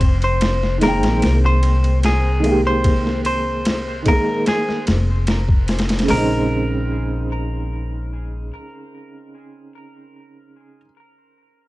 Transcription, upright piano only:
0.78 D#3 G#3
0.84 A#3 G5
2.40 D#3 G#3
2.46 A#3 G4
4.02 D#3 G#3
4.09 A#3 G#4
6.03 C#3
6.08 G#3
6.13 C4
6.17 D#4

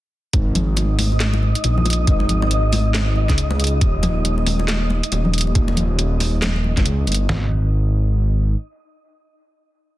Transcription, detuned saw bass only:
0.34 G#1
1.64 A#1
2.08 G#1
3.29 C#2
3.81 D#1
5.12 D#1
5.55 D#1
6.77 G1
6.86 C#2
7.07 G1
7.29 G#1

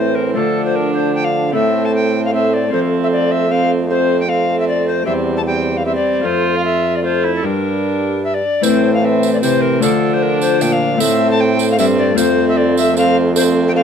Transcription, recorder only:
Already playing: C5
0.15 A#4
0.34 A4
0.65 C5
0.75 A#4
0.94 C5
1.15 G5
1.24 F5
1.54 E5
1.85 A5
1.95 G5
2.25 F5
2.34 E5
2.53 D5
2.73 C5
3.03 E5
3.12 D5
3.31 E5
3.51 F5
3.90 C5
4.20 G5
4.29 F5
4.59 E5
4.67 D5
4.87 C5
5.06 E5
5.37 A5
5.46 G5
5.77 F5
5.85 E5
5.95 D5
6.25 C5
6.56 F5
6.65 E5
6.95 D5
7.04 C5
7.35 A4
7.43 A#4
8.24 E5
8.34 D5
8.63 C5
8.94 F5
9.02 E5 F5
9.33 D5
9.41 C5
9.61 A#4
9.82 A4
10.13 C5
10.22 A#4
10.42 C5
10.61 G5
10.72 F5
11.00 E5
11.31 A5
11.40 G5
11.70 F5
11.79 E5
11.98 D5
12.17 C5
12.48 E5
12.57 D5
12.77 E5
12.97 F5
13.36 C5
13.68 G5
13.75 F5

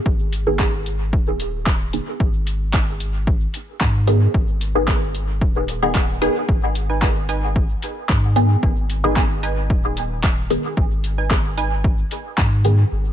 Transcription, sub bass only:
0.06 G#1
1.13 D#1
2.20 G#1
3.81 G#2
4.34 G#1
5.41 D#1
6.49 G#1
8.09 G#2
8.63 G#1
9.70 D#1
10.77 G#1
12.38 G#2
12.91 G#1

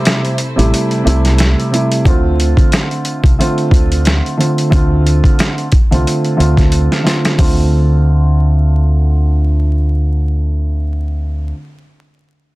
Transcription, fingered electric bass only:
0.58 A1
1.06 C2
2.06 D2
3.24 C2
3.72 D2
4.73 D2
5.92 C2
6.40 D2
7.39 D2

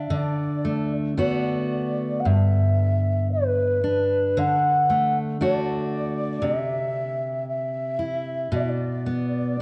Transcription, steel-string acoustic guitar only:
Already playing: D4
0.10 D3
0.65 A3
1.17 A3 B3 F#4
2.25 G2
3.84 D4
4.37 D3
4.90 A3
5.41 A3 D4 F#4
6.42 C3
7.99 E4
8.52 B2
9.06 B3

